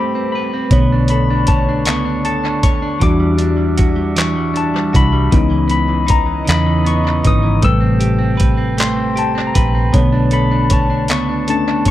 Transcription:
Already playing: brass ensemble E3 A3 C4 G4 A4, tine electric piano G3 C4 B4 C5 B5 D6, clean electric guitar A3 C4 G4 B4
0.15 clean electric guitar C4
0.32 clean electric guitar B4, tine electric piano B5
0.54 clean electric guitar C4
0.71 fingered electric bass B1, tine electric piano D3 A3 C#5, brass ensemble B3 D4 A4 C#5, clean electric guitar B3, kick, closed hi-hat
0.92 clean electric guitar D4
1.08 clean electric guitar A4, tine electric piano B5, closed hi-hat
1.30 clean electric guitar D4
1.47 clean electric guitar C#5, tine electric piano A5, kick, closed hi-hat
1.69 clean electric guitar D4
1.85 fingered electric bass C#2, clean electric guitar B3, tine electric piano C#6, clap, closed hi-hat
2.05 clean electric guitar D4
2.25 clean electric guitar A4, tine electric piano A5, closed hi-hat
2.44 clean electric guitar D4
2.63 fingered electric bass D#2, clean electric guitar C#5, tine electric piano C#6, kick, closed hi-hat
2.82 clean electric guitar D4
3.00 fingered electric bass E2, clean electric guitar E3, brass ensemble G3 F#4 E5, tine electric piano G3 D4 F#4 D6, kick, closed hi-hat
3.20 clean electric guitar G3
3.38 clean electric guitar D4, closed hi-hat
3.57 clean electric guitar G3
3.77 clean electric guitar F#4, kick, closed hi-hat
3.96 clean electric guitar G3
4.16 clean electric guitar E3, tine electric piano C#6, clap, closed hi-hat
4.36 clean electric guitar G3
4.54 clean electric guitar D4, tine electric piano A5, closed hi-hat
4.74 clean electric guitar G3
4.93 fingered electric bass C2, clean electric guitar F#4, tine electric piano B5, kick, closed hi-hat
5.13 clean electric guitar G3
5.32 fingered electric bass C#2, clean electric guitar C#3, tine electric piano E3 B3 D#4, brass ensemble E3 C#4 D#5, kick, closed hi-hat
5.50 clean electric guitar E3
5.68 clean electric guitar B3, tine electric piano B5, closed hi-hat
5.88 clean electric guitar E3
6.07 clean electric guitar D#4, tine electric piano A#5, kick, closed hi-hat
6.26 clean electric guitar E3
6.45 fingered electric bass E2, clean electric guitar C#3, tine electric piano B5, closed hi-hat
6.50 clap
6.66 clean electric guitar E3
6.85 clean electric guitar B3, tine electric piano C#6, closed hi-hat
7.04 clean electric guitar E3
7.23 fingered electric bass G#1, tine electric piano E3 B3 D#4 D#6, clean electric guitar D#4, kick, closed hi-hat
7.43 clean electric guitar E3
7.62 fingered electric bass A1, tine electric piano C3 G3 B4 E6, clean electric guitar A3, brass ensemble C4 A4 G5, kick, closed hi-hat
7.81 clean electric guitar C4
8.00 clean electric guitar G4, closed hi-hat
8.19 clean electric guitar C4
8.37 clean electric guitar B4, kick, closed hi-hat
8.57 clean electric guitar C4
8.78 clean electric guitar A3, tine electric piano C6, clap, closed hi-hat
8.96 clean electric guitar C4
9.16 clean electric guitar G4, tine electric piano A5, closed hi-hat
9.35 clean electric guitar C4
9.47 tine electric piano A#5
9.54 fingered electric bass A#1, clean electric guitar B4, tine electric piano B5, kick, closed hi-hat
9.75 clean electric guitar C4
9.93 fingered electric bass B1, tine electric piano D3 A3 C#5, clean electric guitar B3, brass ensemble B3 C#5 A5, kick, closed hi-hat
10.12 clean electric guitar D4
10.31 clean electric guitar A4, tine electric piano B5, closed hi-hat
10.51 clean electric guitar D4
10.70 clean electric guitar C#5, tine electric piano A5, kick, closed hi-hat
10.90 clean electric guitar D4
11.08 fingered electric bass C#2, clean electric guitar B3, tine electric piano C#6, clap, closed hi-hat
11.29 clean electric guitar D4
11.48 tine electric piano A3 C#4 D4 A5, clean electric guitar A4, closed hi-hat
11.68 clean electric guitar D4
11.85 fingered electric bass D#2, clean electric guitar C#5, kick, closed hi-hat

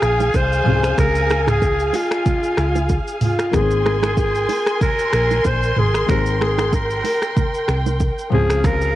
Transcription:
Already playing: grand piano F3 C4 C#4 G#4, alto saxophone G#4, string section G#4 F5 G#5
0.02 fingered electric bass A#1, finger snap, cross-stick, shaker
0.20 low bongo, shaker
0.34 fingered electric bass C2, alto saxophone C5, kick, high bongo, shaker
0.52 shaker
0.64 fingered electric bass C2, grand piano F3 C4 C#4, mid tom, low conga
0.69 grand piano G#4
0.84 finger snap, cross-stick, shaker
0.98 fingered electric bass C#2, alto saxophone A#4, finger snap, kick, cross-stick, low conga, shaker
1.15 shaker
1.30 finger snap, cross-stick, low bongo, shaker
1.47 alto saxophone G#4, finger snap, cross-stick, mid tom, high bongo, low bongo, shaker
1.62 kick, high bongo, shaker
1.79 shaker
1.93 alto saxophone F4, open hi-hat, high bongo, low bongo, shaker
2.11 finger snap, cross-stick, shaker
2.26 kick, low conga, shaker
2.43 shaker
2.57 fingered electric bass C#2, finger snap, cross-stick, shaker
2.75 low bongo, shaker
2.89 kick, high bongo, shaker
3.08 shaker
3.21 alto saxophone F4, mid tom, open hi-hat, low conga, shaker
3.39 finger snap, cross-stick, shaker
3.51 fingered electric bass G#1, grand piano D#3 A#3 B3, alto saxophone G#4, string section A#4 G#5 C6, finger snap, kick, cross-stick, low conga, shaker
3.56 grand piano G#4
3.61 grand piano C4
3.71 shaker
3.86 finger snap, cross-stick, low bongo
4.03 finger snap, cross-stick, high bongo, low bongo, shaker
4.17 alto saxophone G#4, kick, high bongo, shaker
4.35 shaker
4.49 open hi-hat, low bongo
4.67 finger snap, cross-stick, shaker
4.81 alto saxophone A#4, kick, low conga, shaker
4.99 shaker
5.13 fingered electric bass A#1, finger snap, cross-stick, shaker
5.31 low bongo, shaker
5.45 fingered electric bass A#1, alto saxophone C5, kick, high bongo, shaker
5.63 shaker
5.76 fingered electric bass G#1, alto saxophone G#4, mid tom, low conga
5.94 finger snap, cross-stick, shaker
6.06 fingered electric bass G#1, grand piano D#3 A#3 C4, alto saxophone A#4, string section G5, finger snap, kick, cross-stick, low conga, shaker
6.11 grand piano G#4
6.26 shaker
6.41 alto saxophone G#4, finger snap, cross-stick, low bongo
6.58 finger snap, cross-stick, high bongo, low bongo, shaker
6.73 alto saxophone A#4, kick, high bongo, shaker
6.90 shaker
7.04 open hi-hat, low bongo
7.22 finger snap, cross-stick, shaker
7.37 kick, low conga, shaker
7.54 shaker
7.68 fingered electric bass C2, finger snap, cross-stick, shaker
7.86 low bongo, shaker
8.00 kick, high bongo, shaker
8.18 shaker
8.30 fingered electric bass C#2, grand piano F3 C4 C#4, string section G#4 F5, alto saxophone G#4, mid tom, low conga
8.35 grand piano G#4
8.50 finger snap, cross-stick, shaker
8.64 alto saxophone A#4, finger snap, kick, cross-stick, low conga, shaker
8.81 shaker

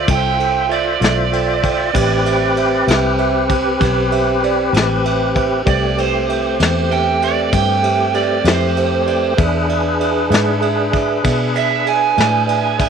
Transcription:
Already playing: tonewheel organ F4 C5 E5
0.07 fingered electric bass C2, tine electric piano F4 A4 C5 E5, electric slide guitar G5, kick, ride
0.39 tine electric piano F4 A4 C5 E5, ride
0.68 tine electric piano F4 A4 C5 E5, electric slide guitar D5, ride
1.00 fingered electric bass B1, tine electric piano F4 A4 C5 E5, electric slide guitar D5, ride
1.04 snare
1.32 tine electric piano F4 A4 C5 G5, ride
1.63 tine electric piano F4 A4 C5 G5, kick, ride
1.93 fingered electric bass A1, tonewheel organ C4 G4 B4, tine electric piano G4 B4 C5 E5, kick, ride
2.25 tine electric piano G4 B4 C5 E5, ride
2.56 tine electric piano G4 B4 C5 E5, ride
2.87 fingered electric bass C2, tine electric piano G4 B4 C5 E5, ride
2.91 snare
3.18 tine electric piano G4 B4 C5 E5, ride
3.48 tine electric piano G4 B4 C5 G5, kick, ride
3.79 fingered electric bass B1, tine electric piano G4 B4 C5 G5, kick, ride
3.84 snare
4.11 tine electric piano G4 B4 C5 E5, ride
4.43 tine electric piano G4 B4 C5 D5, ride
4.72 fingered electric bass A1, tine electric piano G4 B4 C5 G5, ride
4.77 snare
5.05 tine electric piano G4 B4 C5 E5, ride
5.35 tine electric piano G4 B4 C5 E5, kick, ride
5.65 fingered electric bass C2, tonewheel organ A3 C4 G4, tine electric piano G4 B4 C5 D5, kick, ride
5.69 electric slide guitar D5
5.96 tine electric piano G4 B4 C5 E5, ride
6.00 electric slide guitar C5
6.28 tine electric piano G4 B4 C5 E5, ride
6.59 fingered electric bass E2, tine electric piano G4 B4 C5 E5, snare, ride
6.89 tine electric piano G4 B4 C5 E5, electric slide guitar G5, ride
7.22 tine electric piano G4 B4 C5 E5, electric slide guitar D5, ride
7.52 fingered electric bass G2, tine electric piano G4 B4 C5 E5, electric slide guitar G5, kick, ride
7.83 tine electric piano G4 B4 C5 E5, ride
8.14 tine electric piano G4 B4 C5 E5, electric slide guitar D5, ride
8.44 fingered electric bass F2, tine electric piano G4 B4 C5 E5, electric slide guitar C5, snare, ride
8.77 tine electric piano G4 B4 C5 E5, ride
9.06 tine electric piano G4 B4 C5 D5, ride
9.37 fingered electric bass E2, tonewheel organ D4 G#4 B4, tine electric piano G#4 B4 D5 E5, kick, ride
9.68 tine electric piano G#4 B4 D5 E5, ride
9.99 tine electric piano G#4 B4 D5 E5, ride
10.29 fingered electric bass G#2, tine electric piano G#4 B4 D5 E5, ride
10.34 snare
10.61 tine electric piano G#4 B4 D5 E5, ride
10.92 tine electric piano G#4 B4 D5 E5, kick, ride
10.96 snare
11.23 fingered electric bass B2, tine electric piano G#4 B4 D5 E5, kick, snare, ride
11.55 tine electric piano G#4 B4 D5 E5, electric slide guitar E5, ride
11.85 tine electric piano G#4 B4 D5 E5, electric slide guitar G#5, ride
12.16 fingered electric bass A2, tine electric piano G#4 B4 D5 E5, ride
12.20 snare
12.46 tine electric piano G#4 B4 D5 E5, ride
12.78 tine electric piano G#4 B4 D5 E5, kick, ride

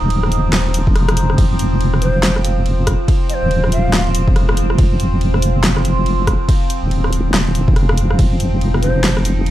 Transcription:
Already playing: synth drone F3 C4 D#4
0.02 wobble bass D#1
0.10 ride
0.23 cross-stick
0.32 closed hi-hat
0.53 wobble bass D#1, snare, clap, ride
0.74 closed hi-hat
0.87 wobble bass F1, kick
0.96 cross-stick, ride
1.09 cross-stick, closed hi-hat
1.17 closed hi-hat
1.30 cross-stick
1.38 wobble bass F1, synth drone F4, kick, ride
1.59 closed hi-hat
1.81 ride
1.94 cross-stick
2.02 ney C5, closed hi-hat
2.23 snare, clap, ride
2.36 cross-stick
2.45 closed hi-hat
2.66 ride
2.87 kick, cross-stick, closed hi-hat
3.08 kick, ride
3.29 ney D#5, closed hi-hat
3.34 ney C5
3.42 wobble bass D#1
3.51 ride
3.64 cross-stick
3.72 ney F5, closed hi-hat
3.93 wobble bass D#1, snare, clap, ride
4.15 closed hi-hat
4.28 wobble bass F1, kick
4.36 cross-stick, ride
4.49 cross-stick
4.57 closed hi-hat
4.70 cross-stick
4.78 wobble bass F1, kick, ride
5.00 closed hi-hat
5.21 ride
5.34 cross-stick
5.42 closed hi-hat
5.64 snare, clap, ride
5.77 cross-stick
5.85 closed hi-hat
6.06 ride
6.27 kick, cross-stick, closed hi-hat
6.49 kick, ride
6.70 closed hi-hat
6.83 wobble bass D#1
6.91 ride
7.04 cross-stick
7.13 closed hi-hat
7.34 wobble bass D#1, snare, clap, ride
7.55 closed hi-hat
7.68 wobble bass F1, kick
7.76 cross-stick, ride
7.89 cross-stick
7.98 closed hi-hat
8.11 cross-stick
8.19 wobble bass F1, synth drone D#4, kick, ride
8.40 closed hi-hat
8.61 ride
8.74 cross-stick
8.82 ney C5, closed hi-hat
9.04 snare, clap, ride
9.17 cross-stick
9.25 closed hi-hat
9.46 ride

